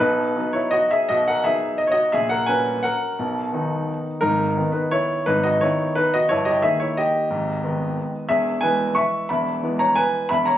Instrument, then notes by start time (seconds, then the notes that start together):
grand piano
0.00 B1 B2 D#4 B4
0.35 F#3 B3 D#4
0.53 E4 C#5
0.71 F#4 D#5
0.91 G#4 E5
1.09 B1 B2 F#4 D#5
1.28 A#4 F#5
1.44 F#3 B3 D#4 G#4 E5
1.78 D#5
1.87 C#5
1.92 F#4 D#5
2.12 A#1 A#2 G#4 E5
2.29 A#4 F#5
2.46 F#3 C#4 B4 G#5
2.83 A#4 F#5
3.19 B1 B2
3.53 D#3 B3 D#4
4.21 G#1 G#2 D#4 A#4
4.57 D#3 B3 D#4
4.72 D#4 B4
4.91 E4 C#5
5.26 G#1 G#2 D#4 B4
5.44 F#4 D#5
5.61 D#3 B3 D#4 E4 C#5
5.95 D#4 B4
6.14 F#4 D#5
6.29 G1 G2 E4 C#5
6.45 G4 D#5
6.62 D#3 A#3 D#4 G#4 E5
6.80 E4 C#5
6.97 G4 D#5
7.30 G#1 G#2
7.63 D#3 G#3 B3
8.29 E1 E2 G#4 E5
8.61 E3 G#3 B3 B4 G#5
8.95 E5 C#6
9.29 E1 E2 E5 B5
9.63 E3 G#3 B3
9.79 C#5 A#5
9.95 B4 G#5
10.29 E1 E2 E5 B5
10.46 C#5 A#5